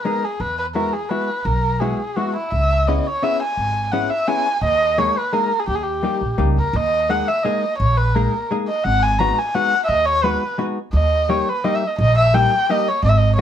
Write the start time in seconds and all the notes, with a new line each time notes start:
0.05 G#3 B3 D#4 G#4 A#4
0.25 G#4
0.40 E2 B4
0.59 B4
0.75 G#3 B3 E4 F#4 A#4
0.93 G#4
1.09 G#3 B3 E4 F#4 B4
1.45 B1 A#4
1.80 G#3 B3 E4 F#4 G#4
2.16 G#3 B3 E4 F#4
2.36 E4
2.51 C#2 E5
2.87 B3 C#4 E4 G#4 D#5
3.07 C#5
3.23 B3 C#4 E4 G#4 E5
3.42 G#5
3.57 G#1
3.92 B3 C#4 E4 G#4 F#5
4.10 E5
4.28 B3 C#4 E4 G#4 G#5
4.62 D#2 D#5
4.98 G#3 A#3 D#4 G#4 C#5
5.18 B4
5.33 G#3 A#3 D#4 G#4 A#4
5.60 G#4
5.68 D#2 G4
5.75 G#4
5.83 G4
6.03 G3 A#3 D#4 G4
6.21 A#1
6.38 C#2 G3 A#3 D#4 G4
6.57 D#2 A#4
6.73 D#2 D#5
7.09 G#3 A#3 D#4 G#4 F#5
7.28 E5
7.43 G#3 A#3 D#4 G#4 D#5
7.78 A#1 C#5
7.97 B4
8.15 G#3 A#3 D#4 G#4 A#4
8.51 G#3 A#3 D#4 G#4
8.68 D#5
8.85 G#1 F#5
9.03 G#5
9.19 G#3 B3 D#4 F#4 A#5
9.39 G#5
9.55 G#3 B3 D#4 F#4 F#5
9.84 D#5 E5
9.89 D#2
10.06 C#5
10.23 G#3 B3 D#4 F#4 B4
10.58 G#3 B3 D#4 F#4
10.93 D#2 D#5
11.29 G3 A#3 D#4 G4 C#5
11.49 B4
11.64 G3 A#3 D#4 G4 D#5
11.75 E5
11.87 D#5
11.99 A#1 D#5
12.18 E5
12.34 G3 A#3 D#4 G4 G5
12.70 G3 A#3 D#4 G4 D#5
12.88 C#5
13.03 G#1 D#5
13.09 E5
13.18 D#5
13.36 C#5